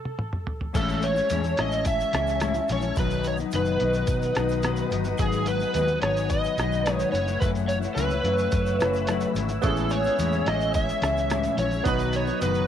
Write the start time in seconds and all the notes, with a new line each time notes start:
0.05 high tom
0.19 mid tom
0.33 mid tom
0.47 floor tom
0.61 floor tom
0.73 A1 A2 E3 G#3 C#4 E4 A4 C#5 G#5 A5 E6, kick, closed hi-hat, crash, shaker
0.88 shaker
1.02 C#5, closed hi-hat, shaker
1.15 G#3 C#4 E4, shaker
1.29 E2 A2 E3 G#3 C#4 E4, closed hi-hat, shaker
1.43 G#3 C#4 E4, shaker
1.57 A1 E3 G#3 C#4 E4 D#5, cross-stick, closed hi-hat, shaker
1.72 shaker
1.85 E5, kick, closed hi-hat, shaker
2.00 shaker
2.13 C#2 E3 G#3 C#4 E4, cross-stick, closed hi-hat, shaker
2.27 shaker
2.29 shaker
2.40 A2 E3 G#3 C#4 E4, cross-stick, closed hi-hat, shaker
2.54 C#4 E4, shaker
2.59 G#3
2.68 A#1 E3 G#3 C#4, closed hi-hat, shaker
2.72 E4 C#5
2.81 C#4 E4, shaker
2.86 G#3
2.96 B1 B2 D#3 F#3 B3 B4 D#5 F#5 D#6, kick, closed hi-hat, shaker
3.00 D#4
3.10 shaker
3.24 C#5, closed hi-hat, shaker
3.37 B3 D#4, shaker
3.40 F#3, shaker
3.51 B2, closed hi-hat, shaker
3.53 F#1 D#3 F#3 B3 D#4 B4, shaker
3.65 shaker
3.79 B1 D#3 F#3 B3 D#4, closed hi-hat, shaker
3.93 shaker
4.07 B2, kick, closed hi-hat, shaker
4.22 shaker
4.35 B1 D#3 F#3 B3 D#4, cross-stick, closed hi-hat, shaker
4.49 shaker
4.51 shaker
4.62 B2 D#3 F#3 B3 D#4, cross-stick, closed hi-hat, shaker
4.76 shaker
4.90 G1 D#3 F#3 B3 D#4, closed hi-hat, shaker
5.04 F#3 B3 D#4, shaker
5.18 G#1 G#2 D#3 F#3 B3 D#4 G#4 G#5, kick, closed hi-hat, shaker
5.32 shaker
5.46 B4, closed hi-hat, shaker
5.60 F#3 B3 D#4, shaker
5.74 D#2 G#2 D#3 F#3 B3 D#4, closed hi-hat, shaker
5.88 B3 D#4, shaker
6.02 G#1 D#3 F#3 B3 D#4 C#5, cross-stick, closed hi-hat, shaker
6.17 shaker
6.30 D#5, kick, closed hi-hat, shaker
6.44 shaker
6.46 shaker
6.58 B1 D#3 F#3 B3 D#4, cross-stick, closed hi-hat, shaker
6.72 shaker
6.74 shaker
6.86 G#2 D#3 F#3 B3 D#4, cross-stick, closed hi-hat, shaker
6.92 C#5
6.99 shaker
7.12 F#1 C#3 E3 A3 C#5 E5 E6, closed hi-hat, shaker
7.16 E4
7.26 E3 A3 E4, shaker
7.40 F#1 F#2 C#3 E3 A3 E4 B4, kick, closed hi-hat, shaker
7.55 shaker
7.68 C#5, closed hi-hat, shaker
7.81 A3 E4, shaker
7.84 E3, shaker
7.95 C#2 F#2 C#3 E3 A3 E4 B4, closed hi-hat, shaker
8.10 E3 A3 E4, shaker
8.23 F#2 C#3 E3 A3 E4, closed hi-hat, shaker
8.38 shaker
8.51 F#2, kick, closed hi-hat, shaker
8.66 shaker
8.79 F#1 C#3 E3 A3 E4, cross-stick, closed hi-hat, shaker
8.93 shaker
8.96 shaker
9.07 F#2 C#3 E3 A3 E4, cross-stick, closed hi-hat, shaker
9.20 shaker
9.34 G#1 C#3 E3 A3, closed hi-hat, shaker
9.39 E4
9.49 E3 A3 E4, shaker
9.62 A1 A2 E3 G#3 B3 C#4 E4 A4 C#5 G#5, kick, closed hi-hat, shaker
9.67 G#4
9.76 shaker
9.89 C#5, closed hi-hat, shaker
9.91 shaker
10.04 C#4 E4, shaker
10.07 G#3, shaker
10.18 E2 A2 E3 G#3 C#4 E4, closed hi-hat, shaker
10.32 shaker
10.46 A1 E3 G#3 C#4 E4 D#5, cross-stick, closed hi-hat, shaker
10.60 shaker
10.74 E5, kick, closed hi-hat, shaker
10.89 shaker
11.02 C#2 E3 G#3, closed hi-hat, shaker
11.03 C#4 E4, cross-stick, shaker
11.17 shaker
11.30 A2 E3 G#3 C#4 E4, cross-stick, closed hi-hat, shaker
11.43 shaker
11.57 A#1 E3 G#3 C#4 E4 C#5, closed hi-hat, shaker
11.71 E4, shaker
11.73 G#3 C#4, shaker
11.84 B1 B2 D#3 F#3 B3 D#4 F#4 B4 D#5 F#5 D#6, kick, closed hi-hat, shaker
11.88 B4
11.98 shaker
12.13 C#5, closed hi-hat, shaker
12.26 B3 D#4, shaker
12.29 F#3, shaker
12.40 F#1 B2 D#3 F#3 B3 D#4 B4, closed hi-hat, shaker
12.54 shaker